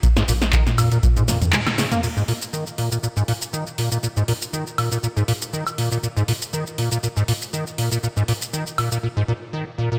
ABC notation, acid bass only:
X:1
M:4/4
L:1/16
Q:"Swing 16ths" 1/4=120
K:Abmix
V:1 name="Acid bass" clef=bass
B,, A,, B,, z E, z B,, B,, B,, A,, B,, z A, z D, B, | B,, A,, B,, z E, z B,, B,, B,, A,, B,, z E, z B,, B,, | B,, A,, B,, z E, z B,, B,, B,, A,, B,, z E, z B,, B,, | B,, A,, B,, z E, z B,, B,, B,, A,, B,, z E, z B,, B,, |
B,, A,, B,, z E, z B,, B,, B,, A,, B,, z E, z B,, B,, |]